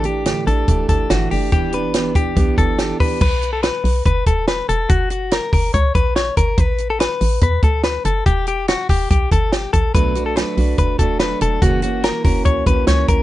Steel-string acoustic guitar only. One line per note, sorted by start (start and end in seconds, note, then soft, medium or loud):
0.05 0.25 E3 soft
0.05 0.25 A3 soft
0.05 0.26 D4 medium
0.05 0.26 G4 medium
0.25 0.47 A2 medium
0.25 0.47 D3 medium
0.25 0.47 E3 medium
0.25 0.47 A3 medium
0.25 0.47 D4 medium
0.25 0.46 G4 medium
0.47 0.66 E3 soft
0.47 0.67 A3 medium
0.47 0.68 D4 medium
0.47 0.68 G4 medium
0.68 1.10 E3 medium
0.68 1.09 A3 medium
0.68 1.11 D4 medium
0.68 1.11 G4 medium
1.10 1.31 A2 medium
1.10 1.31 D3 medium
1.10 1.31 E3 medium
1.10 1.31 A3 medium
1.10 1.30 D4 medium
1.10 1.29 G4 medium
1.30 1.51 E3 soft
1.30 1.52 A3 medium
1.30 1.52 D4 soft
1.30 1.52 G4 medium
1.52 1.73 E3 medium
1.52 1.73 B3 medium
1.52 1.73 D4 medium
1.52 1.72 G4 medium
1.73 1.94 B3 soft
1.73 1.94 D4 medium
1.73 1.94 G4 medium
1.94 2.15 E3 medium
1.94 2.16 B3 medium
1.94 2.15 D4 medium
1.94 2.14 G4 medium
2.15 2.36 B3 soft
2.15 2.36 D4 medium
2.15 2.36 G4 medium
2.36 2.77 E3 medium
2.36 2.79 B3 medium
2.36 2.80 D4 medium
2.36 2.79 G4 medium
2.79 3.00 E3 medium
2.79 3.00 B3 medium
2.79 3.00 D4 medium
2.79 2.98 G4 loud
3.00 3.22 B3 soft
3.00 3.22 D4 medium
3.00 3.21 G4 medium
9.94 10.15 B2 medium
9.94 10.15 F#3 medium
9.94 10.15 A3 medium
9.94 10.16 D4 medium
9.94 10.15 F#4 medium
10.16 10.36 A3 soft
10.16 10.37 D4 medium
10.16 10.36 F#4 medium
10.36 10.57 F#3 medium
10.36 10.58 A3 medium
10.36 10.57 D4 medium
10.36 10.56 F#4 medium
10.57 11.00 A3 medium
10.57 10.99 D4 medium
10.57 10.98 F#4 medium
10.99 11.19 A3 medium
10.99 11.21 D4 medium
10.99 11.20 F#4 medium
11.20 11.62 F#3 medium
11.20 11.62 A3 medium
11.20 11.63 D4 medium
11.20 11.62 F#4 medium
11.61 11.83 F#2 medium
11.61 11.83 C#3 medium
11.61 11.83 E3 loud
11.61 11.83 A#3 medium
11.61 11.83 C#4 loud
11.61 11.82 F#4 medium
11.83 12.03 E3 medium
11.83 12.04 A#3 medium
11.83 12.04 C#4 medium
11.83 12.04 F#4 medium
12.04 12.25 E3 medium
12.04 12.25 A#3 medium
12.04 12.24 C#4 medium
12.04 12.23 F#4 medium
12.24 12.68 E3 soft
12.24 12.67 A#3 soft
12.24 12.66 C#4 medium
12.24 12.65 F#4 medium
12.66 12.86 E3 soft
12.66 12.87 A#3 medium
12.66 12.88 C#4 medium
12.66 12.87 F#4 medium
12.88 13.23 E3 medium
12.88 13.23 A#3 medium
12.88 13.23 C#4 medium
12.88 13.23 F#4 medium